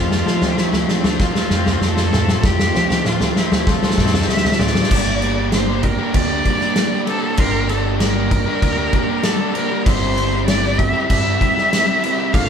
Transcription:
Already playing: F2 F3 C4 F4 C5 A5 C6
0.03 F3 A3 C4 F4
0.11 F3 A3 C4 F4, snare
0.19 F3 A3 C4 F4
0.26 C3 F3 A3 C4 F4, snare
0.33 F3 A3 C4 F4
0.41 F3 A3 C4 F4, snare, floor tom
0.49 F3 A3 C4 F4
0.56 F3 A3 C4 E4 F4, snare
0.64 F3 A3 C4 F4
0.73 F3 A3 C4 F4, snare, floor tom
0.79 F3 A3 C4 F4
0.88 F3 A3 C4 D4 F4, snare
0.95 F3 A3 C4 F4
1.03 F3 A3 C4 F4, snare, floor tom
1.11 F3 A3 C4 F4
1.19 F3 A3 C4 F4, kick, snare, floor tom
1.26 F3 A3 C4 F4
1.34 F3 A3 C4 F4, snare
1.42 F3 A3 C4 F4
1.49 F2 F3 A3 C4 F4, snare
1.57 F3 A3 C4 F4
1.65 F3 A3 C4 F4, snare, floor tom
1.72 F3 A3 C4 F4
1.80 F2 F3 A3 C4 F4, snare
1.85 F3 A3 C4 F4 A4
1.96 F3 A3 C4 F4, snare
2.03 F3 A3 C4 F4
2.10 F3 A3 C4 F4, snare, floor tom, mid tom
2.19 F3 A3 C4 F4
2.26 F3 A3 C4 F4, snare, mid tom
2.35 F3 A3 C4 F4
2.43 F2 F3 A3 C4 F4 G4, kick, snare, floor tom
2.50 F3 A3 C4 F4
2.58 F3 A3 C4 F4, snare
2.65 F3 A3 C4 F4
2.73 C3 F3 A3 C4 F4, snare, floor tom
2.81 F3 A3 C4 F4
2.88 F3 A3 C4 F4, snare, floor tom
2.97 F3 A3 C4 F4
3.04 F3 A3 C4 F4, snare, mid tom
3.12 F3 A3 C4 F4
3.20 F3 A3 C4 F4, snare, floor tom
3.28 F3 A3 C4 F4
3.36 F3 A3 C4 E4 F4, snare
3.43 F3 A3 C4 F4
3.52 F3 A3 C4 F4, snare, floor tom
3.58 F3 A3 C4 F4
3.66 F3 A3 C4 F4 A4, kick, snare, floor tom
3.75 F3 A3 C4 F4
3.82 F3 A3 C4 F4, snare, floor tom
3.90 F3 A3 C4 F4, snare
3.98 F2 F3 A3 C4 F4, kick, snare, mid tom
4.06 F3 A3 C4 F4, snare
4.13 F3 A3 C4 F4, snare, floor tom
4.20 F3 A3 C4 F4, snare
4.28 D2 F3 A3 C4 F4 E5, snare
4.37 F3 A3 C4 F4, snare
4.45 F3 A3 C4 F4, snare, floor tom
4.52 F3 A3 C4 F4, snare
4.59 F3 A3 C4 F4 D5, snare, floor tom, mid tom
4.67 F3 A3 C4 F4, snare
4.75 F3 A3 C4 F4, snare, mid tom
4.82 F3 A3 C4 F4, snare
4.90 G1 G3 A#3 D4 G4 A5 D6, kick, crash
5.21 G3 A#3 D4 G4, crash
5.37 A#3 D4 G4
5.51 G3 A#3 D4 G4 C5, snare, crash
5.68 A#3 D4 G4
5.83 G3 A#3 D4 G4 A#4, muted distorted electric guitar stroke, kick, crash
5.99 A#3 D4 G4
6.14 D2 D5, kick, crash
6.30 A#3 D4 G4
6.44 G3 A#3 D4 G4, kick, crash
6.49 G4
6.60 A#3 D4 G4, snare
6.64 A#3
6.76 G3 A#3 D4 G4, snare, crash
6.91 A#3 D4 G4
7.06 G3 A#3 D4 G4 A4, crash
7.22 A#3 D4 G4
7.37 G1 G3 A#3 D4 G4 A#4 C6, kick, crash
7.68 G3 A#3 D4 G4 A4, crash
7.83 A#3 D4 G4
7.99 G3 A#3 D4 G4 A#4, snare, crash
8.15 A#3 D4 G4
8.30 G3 A#3 D4 G4, muted distorted electric guitar stroke, kick, crash
8.46 A#3 D4 G4
8.62 D2, kick, crash
8.77 A#3 D4 G4
8.93 G3 A#3 D4 G4, kick, crash
9.08 A#3 D4 G4
9.23 G3 A#3 D4 G4 A4, snare, crash
9.40 A#3 D4 G4
9.54 G3 A#3 D4 G4 A#4, crash
9.71 A#3 D4 G4
9.85 G1 G3 C4 E4 G4 C5 E5 E6, kick, crash
10.17 G3 C4 E4 G4, crash
10.32 C4 E4 G4
10.47 G3 C4 E4 G4 D5, snare, crash
10.63 C4 E4 G4
10.78 G3 C4 E4 G4 E5, muted distorted electric guitar stroke, kick, crash
10.93 C4 E4 G4
11.10 G2 E5, kick, crash
11.24 C4 E4 G4
11.40 G3 C4 E4 G4, kick, crash
11.55 C4 E4 G4, snare
11.70 G3 C4 E4 G4, snare, crash
11.74 E4 G4
11.86 C4 E4 G4
12.00 G3 C4 E4 G4, crash
12.05 E4 G4
12.17 C4 E4 G4
12.33 G1 D3 F3 A3 D4 F4 A4 F5 D6, kick, crash

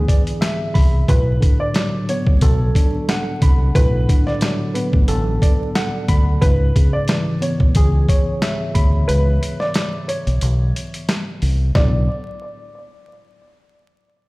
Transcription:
Already playing: G#2 D3 E3 B3 G#4 B4
0.08 D5, kick, closed hi-hat
0.27 closed hi-hat
0.41 E5, snare, closed hi-hat
0.74 C2 B5, kick, open hi-hat
1.08 B1 A2 B4, kick, closed hi-hat
1.40 D3, kick, closed hi-hat
1.60 D5
1.74 F#3, snare, closed hi-hat
2.09 B3 C#5, closed hi-hat
2.27 A1, kick
2.41 B1 A4, kick, closed hi-hat
2.75 D4, kick, closed hi-hat
3.09 F#5, snare, closed hi-hat
3.42 C2 B5, kick, closed hi-hat
3.75 B1 A2 B4, kick, closed hi-hat
4.09 D3, kick, closed hi-hat
4.27 D5, snare
4.41 F#3, snare, closed hi-hat
4.74 B3 B4, closed hi-hat
4.93 A1, kick
5.08 A1 A4, closed hi-hat
5.42 D5, kick, closed hi-hat
5.75 F#5, snare, closed hi-hat
6.08 D2 B5, kick, closed hi-hat
6.41 C#2 G#2 B4, kick, closed hi-hat
6.76 C#3, kick, closed hi-hat
6.93 D5
7.08 E3, snare, closed hi-hat
7.41 B3 C#5, closed hi-hat
7.60 B1, kick
7.75 C#2 G#4, kick, closed hi-hat
8.09 C#5, kick, closed hi-hat
8.42 E5, snare, closed hi-hat
8.75 D2 B5, kick, closed hi-hat
9.08 C#2 B4, closed hi-hat
9.43 closed hi-hat
9.60 D5, snare
9.74 snare, closed hi-hat
10.08 C#5, closed hi-hat
10.27 B1, closed hi-hat
10.41 B1, closed hi-hat
10.76 closed hi-hat
10.94 closed hi-hat
11.09 snare, closed hi-hat
11.42 C2, open hi-hat
11.75 B1 A2 D3 F#3 B3 D5, kick, snare

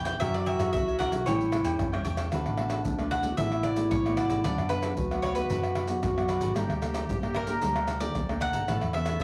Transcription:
Already playing: F2 B2 D4 G4 B4
0.05 E4 G4 B4 D5 G5, pandeiro, tamborim, maracas
0.20 F#2 F#3 C#4 E4 F#4 A#4 C#5 E5, pandeiro, tamborim, low agogo, maracas, surdo
0.34 D5, pandeiro, tamborim, maracas
0.46 F#4 A#4 C#5 E5, pandeiro, low agogo
0.59 F#2 C#4 E4 F#4 A#4 C#5 E5, pandeiro, tamborim, maracas
0.73 C#2 C#3 E5, pandeiro, maracas, surdo
0.87 A#4 C#5 E5, pandeiro, maracas
0.99 C#4 E4 F#4 A#4 C#5 E5 F#5, pandeiro, tamborim, high agogo, maracas
1.11 B1 A#4 C#5 E5, pandeiro, maracas
1.26 A1 A2 G3 C#4 E4 G4 A4 C#5 G5, pandeiro, low agogo, maracas, surdo
1.41 G3 C#4 E4, pandeiro, maracas
1.51 G3 C#4 E4 G4 A4 C#5 G5, pandeiro, tamborim, maracas
1.64 E2 A4 C#5 G5, pandeiro, low agogo, maracas
1.79 F#2 E3, pandeiro, tamborim, maracas, surdo
1.92 G3 C#4 E4 A4 C#5 G5, pandeiro, tamborim, high agogo, maracas
2.05 E2 G4 A4 C#5 G5, pandeiro, high agogo, maracas
2.17 G4 A4 C#5 G5, pandeiro, tamborim, maracas
2.32 D2 D3 A3 B3 D4 F#4 A4 B4 D5, pandeiro, tamborim, maracas, surdo
2.46 A1, pandeiro, tamborim, maracas
2.57 A3 B3 F#4 A4 B4 D5, pandeiro, tamborim
2.70 F#4 A4 B4 D5, pandeiro, tamborim, maracas
2.85 D2 A2, pandeiro, maracas, surdo
2.99 A3 B3 F#4 A4 B4 D5, pandeiro, tamborim, maracas
3.10 F#4 A4 B4 D5 F#5, pandeiro, tamborim
3.23 A3 B3 F#4 A4 B4 D5, pandeiro, maracas
3.31 F#4
3.37 A1 D3 A3 B3 E4 F#4 A4 B4 D5 E5, pandeiro, maracas, surdo
3.52 pandeiro, tamborim, maracas
3.63 F#4 A4 B4 D5, pandeiro, tamborim, maracas
3.76 A3 B3 F#4 A4 B4 D5, pandeiro, maracas
3.91 A1 A2 C#5, pandeiro, tamborim, maracas, surdo
4.05 A3 B3 F#4 A4 B4 D5, pandeiro, tamborim, maracas
4.16 F#4 A4 B4 D5, pandeiro, tamborim, maracas
4.29 A1 F#4 A4 B4 D5, pandeiro, maracas
4.44 D2 D3 F#3 B3 D4 F#4 B4 D5 F#5, pandeiro, tamborim, maracas, surdo
4.58 F#2, pandeiro, tamborim, maracas
4.69 F#3 B3 D4 F#4 B4 D5 F#5, pandeiro, tamborim, maracas
4.83 D4 B4 D5 F#5, pandeiro, tamborim, maracas
4.97 D2 D3 F#4, pandeiro, maracas, surdo
5.11 F#3 B3 F#4 B4 D5 F#5, pandeiro, tamborim, maracas
5.22 D4 B4 C#5 D5 F#5, pandeiro, tamborim
5.35 F#3 B3 F#4 B4 D5 F#5, pandeiro, maracas
5.50 F#2 D3 F#3 B3 D4 F#4 B4 D5 F#5, pandeiro, maracas, surdo
5.63 pandeiro, tamborim, maracas
5.75 D4 B4 D5 F#5, pandeiro, tamborim
5.88 F#3 B3 F#4 B4 D5 F#5, pandeiro, maracas
6.02 F#2 D3 F#4, pandeiro, tamborim, maracas, surdo
6.16 F#3 B3 F#4 B4 D5 F#5, pandeiro, tamborim, maracas
6.29 D4 B4 D5 F#5, pandeiro, tamborim, maracas
6.40 G#1 D4 B4 D5 F#5, pandeiro, maracas
6.55 G1 G3 A#3 D4 G4 A4 D5 G5 A#5, pandeiro, tamborim, maracas, surdo
6.69 D2, pandeiro, tamborim, maracas
6.81 A#3 D4 A4 D5 G5 A#5, pandeiro, tamborim, maracas
6.94 A4 D5 G5 A#5, pandeiro, tamborim, maracas
7.08 G1 D3, pandeiro, maracas, surdo
7.22 A#3 D4 A4 D5 G5 A#5, pandeiro, tamborim, maracas
7.33 A4 A#4 D5 G5 A#5, pandeiro, tamborim
7.47 A#3 D4 A4 D5 G5 A#5, pandeiro, maracas
7.61 D2 G3 A#3 D4 A4 D5 G5 A#5, pandeiro, maracas, surdo
7.76 pandeiro, tamborim, maracas
7.88 A4 D5 G5 A#5, pandeiro, tamborim, maracas
7.99 A#3 D4 A4 D5 G5 A#5, pandeiro, maracas
8.15 D2 D3, pandeiro, tamborim, maracas, surdo
8.29 A#3 D4 A4 D5 G5 A#5, pandeiro, tamborim, maracas
8.40 A4 D5 F#5 G5 A#5, pandeiro, tamborim, maracas
8.53 G1 A4 D5 G5 A#5, pandeiro, maracas
8.68 A1 A2 E3 B3 C#4 A4 B4 C#5 A5, pandeiro, tamborim, maracas, surdo
8.81 E2, pandeiro, tamborim, maracas
8.93 E3 B3 C#4 A4 B4 C#5 E5 A5, pandeiro, tamborim
9.06 A4 B4 C#5 A5, pandeiro, tamborim, maracas
9.20 pandeiro, maracas, surdo

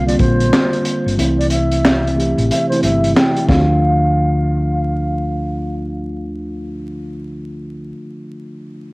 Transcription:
Already playing: C2 D3 G3 A#3 C4 F4
0.06 D3 G3 A#3 C4 F4 D5, closed hi-hat
0.19 A#1 C5, kick, closed hi-hat
0.40 closed hi-hat
0.53 snare, clap
0.73 closed hi-hat
0.85 closed hi-hat
1.06 G1, closed hi-hat
1.16 C2 C3 E3 A3 C4 E4, closed hi-hat
1.38 D5, closed hi-hat
1.50 E5, closed hi-hat
1.71 closed hi-hat
1.85 snare, clap
2.07 closed hi-hat
2.15 C3 E3 A3 C4 G4
2.20 closed hi-hat
2.38 A1, closed hi-hat
2.50 E5, closed hi-hat
2.69 C3 E3 A3 C4 E4 C5, closed hi-hat
2.83 G1 E5, closed hi-hat
3.04 closed hi-hat
3.17 G5, snare, clap
3.36 closed hi-hat
3.43 D3 F3
3.49 D2 A3 D4 F5, kick, snare
3.54 F4

